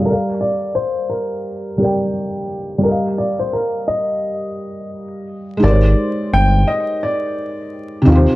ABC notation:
X:1
M:4/4
L:1/16
Q:"Swing 16ths" 1/4=86
K:Ablyd
V:1 name="Upright piano"
B2 d2 c2 B8 z2 | B2 d c B2 e6 z4 | d4 g2 e2 d6 z2 |]
V:2 name="Felt piano"
[G,G=ABdf]8- [G,GABdf]2 [G,GBdg]6 | [G,GBef]16 | [A,EGBc_d]12- [A,EGBcd]2 [C,EFGc]2 |]
V:3 name="Analog synth bass" clef=bass
z16 | z16 | A,,,2 z2 G,,,2 z8 E,, z |]